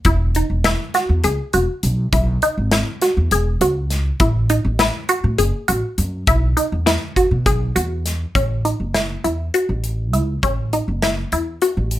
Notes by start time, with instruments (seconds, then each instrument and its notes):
0.05 upright bass E1, synth arpeggio sound E4, kick, closed hi-hat
0.35 synth arpeggio sound D#4, closed hi-hat
0.50 upright bass E1
0.64 synth arpeggio sound E4, snare, closed hi-hat
0.94 synth arpeggio sound F#4, snare, closed hi-hat
1.09 upright bass E2
1.24 upright bass C#2, synth arpeggio sound G#4, closed hi-hat
1.53 upright bass E1, synth arpeggio sound F#4, closed hi-hat
1.83 upright bass B1, closed hi-hat
2.13 upright bass B1, synth arpeggio sound E4, kick, closed hi-hat
2.42 synth arpeggio sound D#4, closed hi-hat
2.58 upright bass G#1
2.72 synth arpeggio sound E4, snare, closed hi-hat
3.02 synth arpeggio sound F#4, snare, closed hi-hat
3.17 upright bass E2
3.31 upright bass E1, synth arpeggio sound G#4, closed hi-hat
3.61 upright bass C#2, synth arpeggio sound F#4, closed hi-hat
3.90 snare, closed hi-hat
4.20 upright bass A1, synth arpeggio sound E4, kick, closed hi-hat
4.50 synth arpeggio sound D#4, closed hi-hat
4.65 upright bass A1
4.79 synth arpeggio sound E4, snare, closed hi-hat
5.09 synth arpeggio sound F#4, closed hi-hat
5.24 upright bass A2
5.38 upright bass F#1, synth arpeggio sound G#4, closed hi-hat
5.68 upright bass A1, synth arpeggio sound F#4, closed hi-hat
5.98 upright bass F#2, closed hi-hat
6.27 upright bass B1, synth arpeggio sound E4, kick, closed hi-hat
6.57 synth arpeggio sound D#4, closed hi-hat
6.72 upright bass E2
6.86 synth arpeggio sound E4, snare, closed hi-hat
7.16 synth arpeggio sound F#4, kick, closed hi-hat
7.31 upright bass B2
7.46 upright bass B1, synth arpeggio sound G#4, kick, closed hi-hat
7.76 upright bass E2, synth arpeggio sound F#4, closed hi-hat
8.06 snare, closed hi-hat
8.35 upright bass A1, synth arpeggio sound C#4, kick, closed hi-hat
8.65 synth arpeggio sound D#4, closed hi-hat
8.80 upright bass F#1
8.94 synth arpeggio sound E4, snare, closed hi-hat
9.24 upright bass E2, synth arpeggio sound E4, closed hi-hat
9.54 synth arpeggio sound F#4, closed hi-hat
9.69 upright bass A1
9.84 closed hi-hat
10.13 upright bass C#2, synth arpeggio sound E4, closed hi-hat
10.43 upright bass A1, synth arpeggio sound C#4, kick, closed hi-hat
10.73 synth arpeggio sound D#4, closed hi-hat
10.88 upright bass F#1
11.02 synth arpeggio sound E4, snare, closed hi-hat
11.32 upright bass E2, synth arpeggio sound E4, closed hi-hat
11.62 synth arpeggio sound F#4, closed hi-hat
11.77 upright bass A1
11.91 closed hi-hat